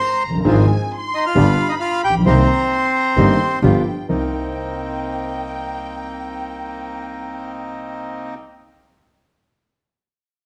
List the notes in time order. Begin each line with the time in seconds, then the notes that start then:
Already playing: C5 C6
0.02 A#5
0.24 F#1
0.30 F1
0.34 F#1
0.40 G1 A#5
0.45 G#1 G#2 F3 G#3 C4 F4 G#4 G#5
0.92 C6
1.14 D#4 D#5
1.26 F4 F5
1.35 G1 G2 D3 G3 B3 D4 G4 B5
1.69 D#4 D#5
1.80 F4 F5
2.04 A#1 G4 G5
2.09 A1
2.15 A#1
2.20 B1
2.26 C2 C3 D#3 A#3 C4 D#4 G4 C5 A#5
2.72 C6
2.94 A#5
3.16 G1 G2 D#3 A#3 C4 D#4 G4 C6
3.62 G1 G2 F3 G3 B3 D4 F4 G4 G5
4.09 C2 A#3 C4 D#4 A#4 G5